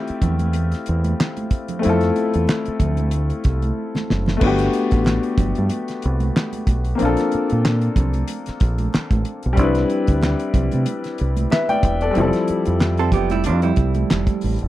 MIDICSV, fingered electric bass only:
0, 0, Header, 1, 3, 480
1, 0, Start_track
1, 0, Tempo, 645161
1, 1363, Time_signature, 4, 2, 24, 8
1, 10922, End_track
2, 0, Start_track
2, 0, Title_t, "Fingered electric bass"
2, 0, Program_c, 0, 33
2, 170, Note_on_c, 0, 40, 88
2, 543, Note_off_c, 0, 40, 0
2, 663, Note_on_c, 0, 40, 91
2, 843, Note_off_c, 0, 40, 0
2, 1383, Note_on_c, 0, 41, 101
2, 1563, Note_off_c, 0, 41, 0
2, 1751, Note_on_c, 0, 40, 88
2, 1830, Note_off_c, 0, 40, 0
2, 2090, Note_on_c, 0, 38, 87
2, 2463, Note_off_c, 0, 38, 0
2, 2575, Note_on_c, 0, 36, 89
2, 2758, Note_off_c, 0, 36, 0
2, 3062, Note_on_c, 0, 30, 82
2, 3243, Note_off_c, 0, 30, 0
2, 3293, Note_on_c, 0, 31, 124
2, 3477, Note_off_c, 0, 31, 0
2, 3670, Note_on_c, 0, 33, 96
2, 3852, Note_off_c, 0, 33, 0
2, 4010, Note_on_c, 0, 31, 83
2, 4110, Note_off_c, 0, 31, 0
2, 4153, Note_on_c, 0, 43, 91
2, 4231, Note_off_c, 0, 43, 0
2, 4504, Note_on_c, 0, 36, 99
2, 4684, Note_off_c, 0, 36, 0
2, 4971, Note_on_c, 0, 35, 89
2, 5156, Note_off_c, 0, 35, 0
2, 5225, Note_on_c, 0, 34, 101
2, 5319, Note_off_c, 0, 34, 0
2, 5598, Note_on_c, 0, 46, 98
2, 5862, Note_off_c, 0, 46, 0
2, 5933, Note_on_c, 0, 36, 88
2, 6117, Note_off_c, 0, 36, 0
2, 6415, Note_on_c, 0, 34, 92
2, 6598, Note_off_c, 0, 34, 0
2, 6784, Note_on_c, 0, 33, 86
2, 6865, Note_off_c, 0, 33, 0
2, 7037, Note_on_c, 0, 35, 89
2, 7134, Note_off_c, 0, 35, 0
2, 7134, Note_on_c, 0, 36, 111
2, 7317, Note_off_c, 0, 36, 0
2, 7510, Note_on_c, 0, 38, 93
2, 7691, Note_off_c, 0, 38, 0
2, 7851, Note_on_c, 0, 36, 102
2, 7950, Note_off_c, 0, 36, 0
2, 7992, Note_on_c, 0, 48, 94
2, 8070, Note_off_c, 0, 48, 0
2, 8341, Note_on_c, 0, 36, 89
2, 8522, Note_off_c, 0, 36, 0
2, 8811, Note_on_c, 0, 28, 88
2, 8996, Note_off_c, 0, 28, 0
2, 9059, Note_on_c, 0, 29, 127
2, 9155, Note_off_c, 0, 29, 0
2, 9430, Note_on_c, 0, 41, 95
2, 9771, Note_on_c, 0, 29, 87
2, 9782, Note_off_c, 0, 41, 0
2, 10023, Note_on_c, 0, 41, 88
2, 10034, Note_off_c, 0, 29, 0
2, 10203, Note_off_c, 0, 41, 0
2, 10254, Note_on_c, 0, 36, 89
2, 10437, Note_off_c, 0, 36, 0
2, 10502, Note_on_c, 0, 29, 85
2, 10597, Note_off_c, 0, 29, 0
2, 10744, Note_on_c, 0, 33, 90
2, 10838, Note_off_c, 0, 33, 0
2, 10875, Note_on_c, 0, 29, 83
2, 10922, Note_off_c, 0, 29, 0
2, 10922, End_track
3, 0, Start_track
3, 0, Title_t, "Muted fingered electric bass strokes"
3, 74, Note_on_c, 9, 29, 49
3, 148, Note_off_c, 9, 29, 0
3, 1994, Note_on_c, 9, 29, 53
3, 2068, Note_off_c, 9, 29, 0
3, 5465, Note_on_c, 9, 29, 46
3, 5539, Note_off_c, 9, 29, 0
3, 6315, Note_on_c, 9, 29, 51
3, 6389, Note_off_c, 9, 29, 0
3, 6665, Note_on_c, 9, 29, 52
3, 6739, Note_off_c, 9, 29, 0
3, 9300, Note_on_c, 9, 29, 43
3, 9374, Note_off_c, 9, 29, 0
3, 10922, End_track
0, 0, End_of_file